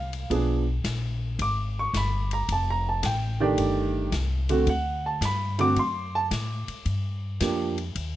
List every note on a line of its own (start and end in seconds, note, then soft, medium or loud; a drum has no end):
0.00 0.29 C2 medium
0.00 0.27 F5 medium
0.13 ride soft
0.30 0.83 B1 medium
0.30 0.63 F3 medium
0.30 0.64 B3 soft
0.30 0.64 D4 medium
0.30 0.64 G#4 medium
0.30 kick soft
0.30 ride medium
0.84 1.37 A#1 medium
0.84 kick soft
0.84 snare medium
0.84 hi-hat pedal medium
0.84 ride medium
1.39 1.92 G#1 medium
1.39 1.77 D6 medium
1.39 kick soft
1.39 ride medium
1.79 1.95 C#6 medium
1.93 2.47 G1 medium
1.93 2.32 B5 medium
1.93 kick soft
1.93 snare medium
1.93 hi-hat pedal medium
1.93 ride medium
2.31 2.49 A#5 medium
2.31 ride soft
2.49 3.02 F1 medium
2.49 2.68 A5 medium
2.49 kick soft
2.49 ride medium
2.70 2.86 A#5 medium
2.89 3.05 A5 medium
3.03 3.56 A1 medium
3.03 3.40 G5 medium
3.03 kick soft
3.03 snare medium
3.03 hi-hat pedal medium
3.03 ride medium
3.40 4.09 D#3 medium
3.40 4.09 A3 medium
3.40 4.10 D4 medium
3.40 4.10 G4 medium
3.40 3.92 D5 medium
3.57 4.11 G1 medium
3.57 kick soft
3.57 ride medium
4.12 4.66 C2 medium
4.12 kick soft
4.12 snare medium
4.12 hi-hat pedal soft
4.12 ride medium
4.49 4.65 D3 medium
4.49 4.66 A3 medium
4.49 4.66 C4 medium
4.49 4.66 F#4 medium
4.49 ride medium
4.67 5.20 D2 medium
4.67 5.04 F#5 medium
4.67 kick soft
4.67 ride medium
5.06 5.22 A5 medium
5.21 5.75 G2 medium
5.21 kick soft
5.21 snare medium
5.21 hi-hat pedal medium
5.21 ride medium
5.25 5.60 B5 medium
5.59 5.75 D3 medium
5.59 5.75 A3 medium
5.59 5.75 C4 medium
5.59 5.75 F#4 medium
5.59 5.77 D6 loud
5.59 ride soft
5.76 6.29 F#2 medium
5.76 6.14 C6 medium
5.76 kick soft
5.76 ride medium
6.15 6.25 A5 loud
6.31 6.66 A2 medium
6.31 kick soft
6.31 snare medium
6.31 hi-hat pedal medium
6.31 ride medium
6.68 muted upright bass stroke soft
6.68 ride soft
6.86 7.39 G2 medium
6.86 kick soft
6.86 ride medium
7.40 7.94 F2 medium
7.40 7.74 F3 medium
7.40 7.74 A#3 medium
7.40 7.75 D4 medium
7.40 7.75 G4 medium
7.40 kick soft
7.40 snare medium
7.40 hi-hat pedal medium
7.40 ride medium
7.78 ride soft
7.95 8.16 D#2 medium
7.95 kick soft
7.95 ride medium